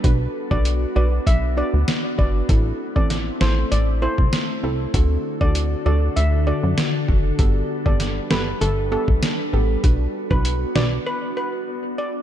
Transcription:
<<
  \new Staff \with { instrumentName = "Steel pan" } { \time 4/4 \key b \phrygian \tempo 4 = 98 r8. d''16 r8 d''16 r16 e''16 r16 d''16 r8. d''16 r16 | r8. d''16 r8 c''16 r16 d''16 r16 c''16 r4 r16 | r8. d''16 r8 d''16 r16 e''16 r16 d''16 r4 r16 | r8. d''16 r8 b'16 r16 a'16 r16 a'16 r4 r16 |
r8. b'16 r8 d''16 r16 b'16 r16 b'16 r8. d''16 r16 | }
  \new Staff \with { instrumentName = "Synth pluck" } { \time 4/4 \key b \phrygian <d' fis' b'>8. <d' fis' b'>8. <d' fis' b'>8 r8 <d' fis' b'>16 r8. <d' fis' b'>8 | <c' e' a'>8. <c' e' a'>8. <c' e' a'>8 r8 <c' e' a'>16 r8. <c' e' a'>8 | <d' fis' a'>8. <d' fis' a'>8. <d' fis' a'>8 r8 <d' fis' a'>16 r8. <d' fis' a'>8 | <b g' a'>8. <b g' a'>8. <b g' a'>8 r8 <b g' a'>16 r8. <b g' a'>8 |
<d' fis' b'>8. <d' fis' b'>8. <d' fis' b'>8 r2 | }
  \new Staff \with { instrumentName = "Ambient pad" } { \time 4/4 \key b \phrygian << { <d' fis'>1 | <c' e'>1 | <d fis' a'>1 | <g b'>1 |
fis'1 | } \\ { b1 | a1 | d'1~ | d'1 |
b1 | } >> }
  \new Staff \with { instrumentName = "Analog synth bass" } { \clef bass \time 4/4 \key b \phrygian b,,8 r16 b,,8. b,,8 b,,8. d,16 r8 g,,8 | a,,8 r16 a,,8. a,,8 a,,8. c,16 r8 c,8 | d,8 r16 d,8. d,8 d,8. fis,16 r8 fis,,8 | g,,8 r16 g,,8. g,,8 g,,8. b,,16 r8 a,,8 |
b,,8 r16 b,,8. b,,8 r2 | }
  \new DrumStaff \with { instrumentName = "Drums" } \drummode { \time 4/4 <hh bd>8. bd16 hh4 <hh bd>4 <hh sn>8 bd8 | <hh bd>8. bd16 <hh sn>8 sn8 hh8. bd16 <hh sn>4 | <hh bd>8. bd16 hh4 hh4 <hh sn>8 bd8 | <hh bd>8. bd16 <hh sn>8 sn8 hh8. bd16 <hh sn>4 |
<hh bd>8. bd16 hh8 sn8 r4 r4 | }
>>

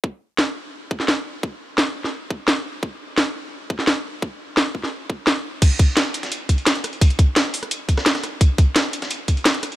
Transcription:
\new DrumStaff \with { instrumentName = "Drums" } \drummode { \time 4/4 \tempo 4 = 172 bd4 sn4 r8 bd16 sn16 sn4 | bd4 sn8. sn16 r8 bd8 sn4 | bd4 sn4 r8 bd16 sn16 sn4 | bd4 sn8 bd16 sn16 r8 bd8 sn4 |
<cymc hh bd>8 <hh bd>8 <hh sn>8 hh16 <hh sn>16 hh8 <hh bd>16 hh16 <hh sn>16 hh16 <hh ss>16 hh16 | <hh hho bd>16 hh16 <hh bd>8 <hh sn>8 <hh hho>16 <hh ss>16 hh8 <hh bd>16 <ss sn>16 <hh sn>16 <hh ss sn>16 <hh ss>8 | <hh bd>8 <hh bd>8 <hh sn>8 hh16 <hh sn>16 hh8 <hh bd>16 hh16 <hh sn>16 hh16 <hh ss>16 hh16 | }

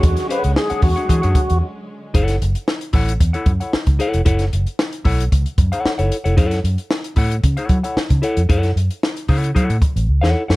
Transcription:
<<
  \new Staff \with { instrumentName = "Clean electric guitar" } { \time 4/4 \key fis \minor \tempo 4 = 113 r8 <d' gis' cis'' fis''>8 r16 <d' gis' cis'' fis''>16 r16 <d' gis' cis'' fis''>16 <d' gis' cis'' gis''>16 <d' gis' cis'' fis''>16 r4. | <e' a' cis'' fis''>8 r4 <e' a' cis'' fis''>16 r8 <e' a' cis'' fis''>16 r16 <e' a' cis'' fis''>16 r8 <e' a' cis'' fis''>8 | <e' a' cis'' fis''>16 r4 r16 <e' a' cis'' fis''>16 r4 <e' a' cis'' fis''>8 <e' a' cis'' fis''>16 r16 <e' a' cis'' fis''>16 | <e' a' cis'' fis''>8 r4 <e' a' cis'' fis''>16 r8 <e' a' cis'' fis''>8 <e' a' cis'' fis''>16 r8 <e' a' cis'' fis''>16 r16 |
<e' a' cis'' fis''>8 r4 <e' a' cis'' fis''>8 <e' a' cis'' fis''>8 r8. <e' a' cis'' fis''>8 <e' a' cis'' fis''>16 | }
  \new Staff \with { instrumentName = "Tonewheel organ" } { \time 4/4 \key fis \minor fis'8 b'8 gis'8 fis'4. r4 | r1 | r1 | r1 |
r1 | }
  \new Staff \with { instrumentName = "String section" } { \clef bass \time 4/4 \key fis \minor <d fis gis cis'>1 | r1 | r1 | r1 |
r1 | }
  \new Staff \with { instrumentName = "Fingered electric bass" } { \clef bass \time 4/4 \key fis \minor e,16 r8 cis,16 r8 e,16 r16 e16 fis,16 r16 e,16 r4 | fis,,8 fis,,16 r8. a,,8 e,16 r16 fis,16 r8 cis,16 r16 eis,,16 | fis,,8 fis,,16 r8. b,,8 cis,16 r16 fis,16 r8 fis,,16 r16 eis,,16 | fis,8 fis,16 r8. a,8 cis16 r16 fis16 r8 cis16 r16 eis,16 |
fis,8 fis,16 r8. cis8 fis16 a,16 r16 a,,16 cis,16 e,16 r16 fis,16 | }
  \new DrumStaff \with { instrumentName = "Drums" } \drummode { \time 4/4 <hh bd>16 <hh sn>16 hh16 hh16 sn16 hh16 <hho bd>16 hh16 <hh bd>16 hh16 <hh bd>16 hh16 r4 | <hh bd>16 <hh sn>16 hh16 hh16 sn16 hh16 <hho bd>16 hh16 <hh bd>16 hh16 <hh bd>16 hh16 sn16 <hh bd>16 hh16 hh16 | <hh bd>16 <hh sn>16 hh16 hh16 sn16 hh16 <hho bd>16 hh16 <hh bd>16 hh16 <hh bd>16 hh16 sn16 hh16 hh16 hh16 | <hh bd>16 <hh sn>16 hh16 hh16 sn16 hh16 <hho bd>16 hh16 <hh bd>16 hh16 <hh bd>16 hh16 sn16 <hh bd>16 hh16 hh16 |
<hh bd>16 <hh sn>16 hh16 hh16 sn16 hh16 <hho bd>16 hh16 <hh bd>16 hh16 <hh bd>16 hh16 r16 sn8 sn16 | }
>>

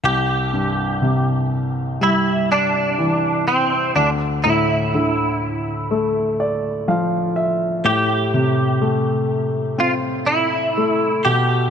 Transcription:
<<
  \new Staff \with { instrumentName = "Clean electric guitar" } { \time 4/4 \key a \minor \tempo 4 = 62 g'4. r8 e'8 d'4 c'8 | d'8 e'2 r4. | g'2 f'8 e'4 g'8 | }
  \new Staff \with { instrumentName = "Grand piano" } { \time 4/4 \key a \minor r1 | r2 r8 d''8 f''8 e''8 | r1 | }
  \new Staff \with { instrumentName = "Grand piano" } { \clef bass \time 4/4 \key a \minor c,8 g,8 c4 g4 e4 | d,8 a,8 d4 a4 f4 | a,8 c8 a4 c'4 a8 b,8 | }
>>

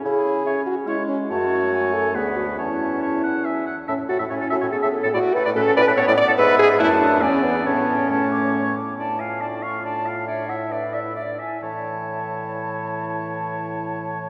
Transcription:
<<
  \new Staff \with { instrumentName = "Flute" } { \time 3/4 \key a \major \tempo 4 = 139 r4 e''8. r16 e''8. r16 | a''4 gis''4 fis''4 | a''2 gis''8 r8 | a''16 r16 cis''16 a''16 e''16 cis''16 a''16 e''16 cis''16 a''16 r16 cis''16 |
b''16 r16 fis''16 b''16 a''16 fis''16 b''16 a''16 fis''16 b''16 r16 fis''16 | b''4 a''4 gis''4 | a''4 a''8 d'''8 cis'''8 d'''8 | a''8 gis''8 a''8 cis'''8 a''4 |
e''8 fis''8 e''8 d''8 e''8 gis''8 | a''2.~ | a''2. | }
  \new Staff \with { instrumentName = "Oboe" } { \time 3/4 \key a \major r4 cis''8. r16 cis''8. r16 | cis''2 b'4 | cis''4 cis''8 fis''8 e''8 fis''8 | e''16 r16 a'16 e''16 cis''16 a'16 e''16 cis''16 a'16 e''16 r16 a'16 |
d''16 r16 a'16 d''16 b'16 a'16 d''16 b'16 a'16 d''16 r16 a'16 | e''4 fis''4 d''4 | cis''4 cis''4. r8 | d''8 f''8 d''8 f''8 d''8 f''8 |
d''8 e''8 d''8 e''8 d''8 e''8 | cis''2.~ | cis''2. | }
  \new Staff \with { instrumentName = "French horn" } { \time 3/4 \key a \major gis'4. fis'8 e'8 cis'8 | fis'4. a'8 gis'8 fis'8 | e'2~ e'8 r8 | cis'8 fis'8 e'8 fis'8 gis'8 a'8 |
fis'8 b'8 a'8 b'8 cis''8 d''8 | b'8 gis'8 e'8 d'8 cis'8 b8 | b4 a4. r8 | d'8 f'8 d'8 f'8 d'8 f'8 |
d'8 e'8 d'8 e'8 d'8 e'8 | e2.~ | e2. | }
  \new Staff \with { instrumentName = "Clarinet" } { \time 3/4 \key a \major e'4 cis'4 gis4 | a2 b4 | cis'2~ cis'8 r8 | r4 cis'4 b4 |
a4 cis'4 b4~ | b4 a4 b4 | cis'2~ cis'8 r8 | r4 f'2 |
cis''4 b'4 d''8 r8 | e'2.~ | e'2. | }
  \new Staff \with { instrumentName = "Bassoon" } { \clef bass \time 3/4 \key a \major cis8. r2 r16 | fis,2 d,4 | e,2~ e,8 r8 | a,16 r16 a,16 a,16 a,16 a,16 a,16 a,16 a,16 a,16 r16 a,16 |
a,16 r16 a,16 a,16 a,16 a,16 a,16 a,16 a,16 a,16 r16 a,16 | gis,4 fis,4 e,4 | a,2~ a,8 r8 | a,2.~ |
a,2~ a,8 r8 | a,2.~ | a,2. | }
>>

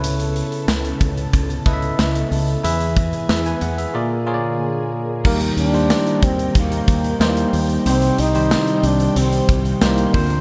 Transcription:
<<
  \new Staff \with { instrumentName = "String machine" } { \time 4/4 \key a \mixolydian \tempo 4 = 92 << { b1~ | b2 ais2 | \key c \minor bes'1 | c''2.~ c''8 d''8 | } \\ { <cis a'>1 | <e gis'>2 <d gis'>2 | <ees g''>1~ | <ees g''>2.~ <ees g''>8 <bes' c'''>8 | } >> }
  \new Staff \with { instrumentName = "Tine electric piano" } { \time 4/4 \key a \mixolydian << { r1 | r4 <gis' e''>16 <b' gis''>16 fis''16 <gis' e''>8 r4. r16 | \key c \minor r1 | r1 | } \\ { <e' a' b' cis''>4~ <e' a' b' cis''>16 r4 r16 <e' a' b' dis'' e''>4~ <e' a' b' dis'' e''>16 r16 | <e' gis' b' e''>4.~ <e' gis' b' e''>16 r16 <eis' gis' ais' d''>8 <eis' gis' ais' cis'' d''>4~ <eis' gis' ais' cis'' d''>16 r16 | <g bes ees' g' bes'>8 r16 <g bes g' c''>4.~ <g bes g' c''>16 r8 <g bes ees' g' c''>8. r16 | <g c' ees' g' c''>8 r16 <ees g c' g' c''>4.~ <ees g c' g' c''>16 r8 <g c' ees' g' c''>8 <c' d' f' bes' c''>8 | } >> }
  \new Staff \with { instrumentName = "Tine electric piano" } { \clef bass \time 4/4 \key a \mixolydian cis4 r2. | e4. r8 ais,4. r8 | \key c \minor ees4. r2 r8 | c4. r2 d8 | }
  \new Staff \with { instrumentName = "Flugelhorn" } { \time 4/4 \key a \mixolydian r1 | r1 | \key c \minor bes8 d'4 c'8 bes4 bes8. r16 | c'8 ees'4 d'8 c'8 r8 bes8. r16 | }
  \new Staff \with { instrumentName = "Overdriven electric guitar" } { \clef bass \time 4/4 \key a \mixolydian r1 | r1 | \key c \minor <ees bes>2 <ees bes ees'>2 | <c g c'>8 <g c'>4. <c g c'>4. <bes, f bes>8 | }
  \new Staff \with { instrumentName = "Fretless electric bass" } { \clef bass \time 4/4 \key a \mixolydian cis,4 cis,8 cis,8 cis,8 cis,8 cis,8 cis,8 | e,4 e,8 e,8 r2 | \key c \minor ees,8 ees,8. r16 ees,8 ees,8 ees,8 ees,8 ees,8 | c,8 c,8. r16 c,8 c,8 c,8 c,8 d,8 | }
  \new DrumStaff \with { instrumentName = "Drums" } \drummode { \time 4/4 hh16 hh16 hh16 hh16 <sn tamb>16 hh16 <hh bd>16 hh16 <hh bd>16 hh16 <hh bd>16 hh16 <sn tamb>16 hh16 hho16 hh16 | hh16 hh16 <hh bd>16 hh16 <sn tamb>16 hh16 hh16 hh16 r4 r4 | <cymc bd>16 hh16 hh16 hh16 <sn tamb>16 hh16 <hh bd>16 hh16 <hh bd>16 hh16 <hh bd>16 hh16 <sn tamb>16 hh16 hho16 hh16 | hh16 hh16 hh16 hh16 <sn tamb>16 hh16 hh16 hh16 hh16 hh16 <hh bd>16 hh16 <sn tamb>16 hh16 <hho bd>16 hh16 | }
>>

